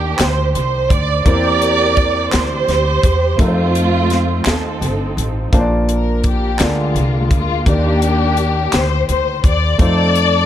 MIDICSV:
0, 0, Header, 1, 5, 480
1, 0, Start_track
1, 0, Key_signature, -2, "major"
1, 0, Tempo, 710900
1, 851, Time_signature, 6, 3, 24, 8
1, 7061, End_track
2, 0, Start_track
2, 0, Title_t, "String section"
2, 0, Program_c, 0, 48
2, 0, Note_on_c, 0, 58, 76
2, 0, Note_on_c, 0, 62, 78
2, 0, Note_on_c, 0, 67, 99
2, 111, Note_off_c, 0, 58, 0
2, 111, Note_off_c, 0, 62, 0
2, 125, Note_on_c, 0, 72, 97
2, 132, Note_off_c, 0, 67, 0
2, 359, Note_off_c, 0, 72, 0
2, 367, Note_on_c, 0, 72, 89
2, 592, Note_off_c, 0, 72, 0
2, 611, Note_on_c, 0, 74, 106
2, 836, Note_off_c, 0, 74, 0
2, 844, Note_on_c, 0, 74, 126
2, 856, Note_on_c, 0, 67, 90
2, 857, Note_on_c, 0, 70, 91
2, 1541, Note_off_c, 0, 74, 0
2, 1547, Note_off_c, 0, 67, 0
2, 1547, Note_off_c, 0, 70, 0
2, 1567, Note_on_c, 0, 72, 110
2, 1580, Note_on_c, 0, 67, 74
2, 2269, Note_off_c, 0, 67, 0
2, 2288, Note_on_c, 0, 65, 107
2, 2290, Note_off_c, 0, 72, 0
2, 2303, Note_on_c, 0, 60, 73
2, 2304, Note_on_c, 0, 57, 82
2, 2991, Note_off_c, 0, 57, 0
2, 2991, Note_off_c, 0, 60, 0
2, 3010, Note_off_c, 0, 65, 0
2, 3023, Note_on_c, 0, 69, 78
2, 3026, Note_on_c, 0, 63, 59
2, 3027, Note_on_c, 0, 60, 56
2, 3557, Note_off_c, 0, 69, 0
2, 3711, Note_off_c, 0, 63, 0
2, 3712, Note_off_c, 0, 60, 0
2, 3989, Note_on_c, 0, 70, 81
2, 4204, Note_off_c, 0, 70, 0
2, 4231, Note_on_c, 0, 67, 86
2, 4461, Note_off_c, 0, 67, 0
2, 4467, Note_on_c, 0, 56, 61
2, 4469, Note_on_c, 0, 58, 61
2, 4471, Note_on_c, 0, 65, 76
2, 4941, Note_off_c, 0, 65, 0
2, 4957, Note_on_c, 0, 65, 91
2, 5152, Note_off_c, 0, 56, 0
2, 5153, Note_off_c, 0, 58, 0
2, 5168, Note_off_c, 0, 65, 0
2, 5191, Note_on_c, 0, 58, 82
2, 5195, Note_on_c, 0, 62, 82
2, 5196, Note_on_c, 0, 67, 101
2, 5873, Note_off_c, 0, 58, 0
2, 5876, Note_off_c, 0, 62, 0
2, 5903, Note_off_c, 0, 67, 0
2, 5911, Note_on_c, 0, 72, 103
2, 6134, Note_off_c, 0, 72, 0
2, 6143, Note_on_c, 0, 72, 92
2, 6360, Note_off_c, 0, 72, 0
2, 6391, Note_on_c, 0, 74, 97
2, 6620, Note_off_c, 0, 74, 0
2, 6631, Note_on_c, 0, 74, 127
2, 6632, Note_on_c, 0, 69, 92
2, 7061, Note_off_c, 0, 69, 0
2, 7061, Note_off_c, 0, 74, 0
2, 7061, End_track
3, 0, Start_track
3, 0, Title_t, "Grand piano"
3, 0, Program_c, 1, 0
3, 0, Control_c, 1, 64, 127
3, 0, Note_on_c, 1, 51, 59
3, 0, Note_on_c, 1, 58, 57
3, 0, Note_on_c, 1, 62, 51
3, 0, Note_on_c, 1, 67, 60
3, 0, Note_on_c, 1, 74, 66
3, 106, Note_off_c, 1, 51, 0
3, 822, Note_off_c, 1, 58, 0
3, 825, Note_off_c, 1, 62, 0
3, 831, Note_off_c, 1, 67, 0
3, 833, Note_off_c, 1, 74, 0
3, 845, Note_on_c, 1, 58, 64
3, 850, Note_on_c, 1, 60, 58
3, 853, Note_on_c, 1, 52, 63
3, 855, Note_on_c, 1, 64, 55
3, 860, Control_c, 1, 64, 0
3, 860, Note_on_c, 1, 67, 56
3, 864, Note_on_c, 1, 72, 63
3, 980, Control_c, 1, 64, 127
3, 1546, Note_off_c, 1, 52, 0
3, 2262, Note_off_c, 1, 58, 0
3, 2264, Note_off_c, 1, 60, 0
3, 2267, Note_off_c, 1, 64, 0
3, 2269, Note_off_c, 1, 67, 0
3, 2271, Note_off_c, 1, 72, 0
3, 2281, Note_on_c, 1, 57, 65
3, 2289, Note_on_c, 1, 60, 62
3, 2291, Note_on_c, 1, 63, 54
3, 2301, Note_on_c, 1, 65, 53
3, 2302, Control_c, 1, 64, 0
3, 2303, Note_on_c, 1, 70, 57
3, 2341, Note_off_c, 1, 70, 0
3, 2351, Note_on_c, 1, 72, 63
3, 2411, Control_c, 1, 64, 127
3, 3699, Note_off_c, 1, 57, 0
3, 3703, Note_off_c, 1, 60, 0
3, 3704, Note_off_c, 1, 63, 0
3, 3709, Note_off_c, 1, 65, 0
3, 3730, Note_on_c, 1, 58, 73
3, 3731, Note_off_c, 1, 72, 0
3, 3732, Note_on_c, 1, 62, 66
3, 3734, Note_on_c, 1, 46, 70
3, 3735, Note_on_c, 1, 65, 60
3, 3738, Note_on_c, 1, 81, 67
3, 3740, Control_c, 1, 64, 0
3, 3741, Note_on_c, 1, 72, 59
3, 3780, Note_off_c, 1, 72, 0
3, 3786, Note_on_c, 1, 74, 86
3, 3846, Control_c, 1, 64, 127
3, 4425, Note_off_c, 1, 46, 0
3, 4442, Note_off_c, 1, 58, 0
3, 4443, Note_off_c, 1, 62, 0
3, 4450, Note_off_c, 1, 65, 0
3, 4452, Note_on_c, 1, 58, 60
3, 4453, Note_on_c, 1, 62, 48
3, 4454, Note_off_c, 1, 74, 0
3, 4454, Note_off_c, 1, 81, 0
3, 4458, Note_on_c, 1, 50, 56
3, 4459, Control_c, 1, 64, 0
3, 4460, Note_on_c, 1, 65, 52
3, 4461, Note_on_c, 1, 68, 50
3, 4464, Note_on_c, 1, 74, 66
3, 4573, Control_c, 1, 64, 127
3, 5147, Note_off_c, 1, 50, 0
3, 5161, Note_off_c, 1, 58, 0
3, 5167, Note_off_c, 1, 62, 0
3, 5171, Note_on_c, 1, 58, 61
3, 5175, Note_off_c, 1, 65, 0
3, 5175, Note_off_c, 1, 68, 0
3, 5177, Note_off_c, 1, 74, 0
3, 5177, Note_on_c, 1, 62, 52
3, 5179, Control_c, 1, 64, 0
3, 5184, Note_on_c, 1, 51, 63
3, 5189, Note_on_c, 1, 67, 57
3, 5197, Note_on_c, 1, 74, 63
3, 5318, Control_c, 1, 64, 127
3, 5870, Note_off_c, 1, 51, 0
3, 6583, Note_off_c, 1, 58, 0
3, 6586, Note_off_c, 1, 62, 0
3, 6592, Note_off_c, 1, 67, 0
3, 6596, Note_off_c, 1, 74, 0
3, 6604, Note_on_c, 1, 57, 66
3, 6611, Note_on_c, 1, 60, 56
3, 6615, Note_on_c, 1, 63, 61
3, 6618, Control_c, 1, 64, 0
3, 6622, Note_on_c, 1, 65, 58
3, 6629, Note_on_c, 1, 72, 62
3, 6747, Control_c, 1, 64, 127
3, 7061, Note_off_c, 1, 57, 0
3, 7061, Note_off_c, 1, 60, 0
3, 7061, Note_off_c, 1, 63, 0
3, 7061, Note_off_c, 1, 65, 0
3, 7061, Note_off_c, 1, 72, 0
3, 7061, End_track
4, 0, Start_track
4, 0, Title_t, "Upright bass"
4, 0, Program_c, 2, 32
4, 0, Note_on_c, 2, 39, 87
4, 105, Note_off_c, 2, 39, 0
4, 129, Note_on_c, 2, 38, 88
4, 351, Note_off_c, 2, 38, 0
4, 369, Note_on_c, 2, 36, 72
4, 591, Note_off_c, 2, 36, 0
4, 611, Note_on_c, 2, 38, 99
4, 832, Note_off_c, 2, 38, 0
4, 849, Note_on_c, 2, 40, 98
4, 1544, Note_off_c, 2, 40, 0
4, 1576, Note_on_c, 2, 38, 96
4, 1795, Note_off_c, 2, 38, 0
4, 1808, Note_on_c, 2, 38, 83
4, 2031, Note_off_c, 2, 38, 0
4, 2050, Note_on_c, 2, 40, 89
4, 2272, Note_off_c, 2, 40, 0
4, 2290, Note_on_c, 2, 41, 99
4, 2984, Note_off_c, 2, 41, 0
4, 3012, Note_on_c, 2, 39, 82
4, 3249, Note_on_c, 2, 31, 79
4, 3259, Note_off_c, 2, 39, 0
4, 3471, Note_off_c, 2, 31, 0
4, 3491, Note_on_c, 2, 33, 85
4, 3712, Note_off_c, 2, 33, 0
4, 3733, Note_on_c, 2, 34, 79
4, 4425, Note_off_c, 2, 34, 0
4, 4453, Note_on_c, 2, 38, 97
4, 4673, Note_off_c, 2, 38, 0
4, 4692, Note_on_c, 2, 36, 84
4, 4936, Note_off_c, 2, 36, 0
4, 4936, Note_on_c, 2, 38, 85
4, 5154, Note_off_c, 2, 38, 0
4, 5174, Note_on_c, 2, 39, 89
4, 5865, Note_off_c, 2, 39, 0
4, 5894, Note_on_c, 2, 38, 87
4, 6113, Note_off_c, 2, 38, 0
4, 6134, Note_on_c, 2, 38, 76
4, 6353, Note_off_c, 2, 38, 0
4, 6375, Note_on_c, 2, 39, 88
4, 6594, Note_off_c, 2, 39, 0
4, 6611, Note_on_c, 2, 41, 104
4, 7061, Note_off_c, 2, 41, 0
4, 7061, End_track
5, 0, Start_track
5, 0, Title_t, "Drums"
5, 126, Note_on_c, 9, 39, 85
5, 130, Note_on_c, 9, 42, 91
5, 139, Note_on_c, 9, 38, 96
5, 193, Note_off_c, 9, 39, 0
5, 198, Note_off_c, 9, 42, 0
5, 207, Note_off_c, 9, 38, 0
5, 373, Note_on_c, 9, 42, 55
5, 441, Note_off_c, 9, 42, 0
5, 610, Note_on_c, 9, 36, 101
5, 615, Note_on_c, 9, 42, 56
5, 677, Note_off_c, 9, 36, 0
5, 683, Note_off_c, 9, 42, 0
5, 849, Note_on_c, 9, 36, 92
5, 850, Note_on_c, 9, 42, 71
5, 916, Note_off_c, 9, 36, 0
5, 917, Note_off_c, 9, 42, 0
5, 1092, Note_on_c, 9, 42, 52
5, 1159, Note_off_c, 9, 42, 0
5, 1328, Note_on_c, 9, 42, 48
5, 1330, Note_on_c, 9, 36, 87
5, 1395, Note_off_c, 9, 42, 0
5, 1398, Note_off_c, 9, 36, 0
5, 1568, Note_on_c, 9, 39, 85
5, 1569, Note_on_c, 9, 42, 86
5, 1578, Note_on_c, 9, 38, 97
5, 1636, Note_off_c, 9, 39, 0
5, 1636, Note_off_c, 9, 42, 0
5, 1645, Note_off_c, 9, 38, 0
5, 1813, Note_on_c, 9, 42, 53
5, 1817, Note_on_c, 9, 38, 38
5, 1880, Note_off_c, 9, 42, 0
5, 1885, Note_off_c, 9, 38, 0
5, 2049, Note_on_c, 9, 36, 100
5, 2053, Note_on_c, 9, 42, 59
5, 2116, Note_off_c, 9, 36, 0
5, 2120, Note_off_c, 9, 42, 0
5, 2289, Note_on_c, 9, 36, 102
5, 2290, Note_on_c, 9, 42, 70
5, 2356, Note_off_c, 9, 36, 0
5, 2358, Note_off_c, 9, 42, 0
5, 2534, Note_on_c, 9, 42, 61
5, 2601, Note_off_c, 9, 42, 0
5, 2769, Note_on_c, 9, 42, 47
5, 2778, Note_on_c, 9, 38, 33
5, 2837, Note_off_c, 9, 42, 0
5, 2845, Note_off_c, 9, 38, 0
5, 3004, Note_on_c, 9, 39, 79
5, 3011, Note_on_c, 9, 42, 80
5, 3020, Note_on_c, 9, 38, 90
5, 3072, Note_off_c, 9, 39, 0
5, 3079, Note_off_c, 9, 42, 0
5, 3088, Note_off_c, 9, 38, 0
5, 3256, Note_on_c, 9, 42, 58
5, 3323, Note_off_c, 9, 42, 0
5, 3499, Note_on_c, 9, 42, 63
5, 3567, Note_off_c, 9, 42, 0
5, 3732, Note_on_c, 9, 36, 94
5, 3733, Note_on_c, 9, 42, 70
5, 3799, Note_off_c, 9, 36, 0
5, 3801, Note_off_c, 9, 42, 0
5, 3975, Note_on_c, 9, 42, 56
5, 4042, Note_off_c, 9, 42, 0
5, 4211, Note_on_c, 9, 42, 51
5, 4214, Note_on_c, 9, 36, 77
5, 4278, Note_off_c, 9, 42, 0
5, 4281, Note_off_c, 9, 36, 0
5, 4449, Note_on_c, 9, 39, 77
5, 4453, Note_on_c, 9, 42, 94
5, 4462, Note_on_c, 9, 38, 89
5, 4516, Note_off_c, 9, 39, 0
5, 4520, Note_off_c, 9, 42, 0
5, 4529, Note_off_c, 9, 38, 0
5, 4698, Note_on_c, 9, 42, 51
5, 4765, Note_off_c, 9, 42, 0
5, 4934, Note_on_c, 9, 36, 93
5, 4937, Note_on_c, 9, 42, 61
5, 5002, Note_off_c, 9, 36, 0
5, 5005, Note_off_c, 9, 42, 0
5, 5174, Note_on_c, 9, 36, 99
5, 5175, Note_on_c, 9, 42, 70
5, 5241, Note_off_c, 9, 36, 0
5, 5242, Note_off_c, 9, 42, 0
5, 5415, Note_on_c, 9, 42, 59
5, 5483, Note_off_c, 9, 42, 0
5, 5651, Note_on_c, 9, 42, 48
5, 5719, Note_off_c, 9, 42, 0
5, 5892, Note_on_c, 9, 39, 85
5, 5892, Note_on_c, 9, 42, 95
5, 5901, Note_on_c, 9, 38, 94
5, 5959, Note_off_c, 9, 39, 0
5, 5959, Note_off_c, 9, 42, 0
5, 5969, Note_off_c, 9, 38, 0
5, 6136, Note_on_c, 9, 42, 55
5, 6204, Note_off_c, 9, 42, 0
5, 6373, Note_on_c, 9, 36, 105
5, 6379, Note_on_c, 9, 42, 58
5, 6440, Note_off_c, 9, 36, 0
5, 6446, Note_off_c, 9, 42, 0
5, 6612, Note_on_c, 9, 36, 95
5, 6612, Note_on_c, 9, 42, 78
5, 6680, Note_off_c, 9, 36, 0
5, 6680, Note_off_c, 9, 42, 0
5, 6856, Note_on_c, 9, 42, 59
5, 6923, Note_off_c, 9, 42, 0
5, 7061, End_track
0, 0, End_of_file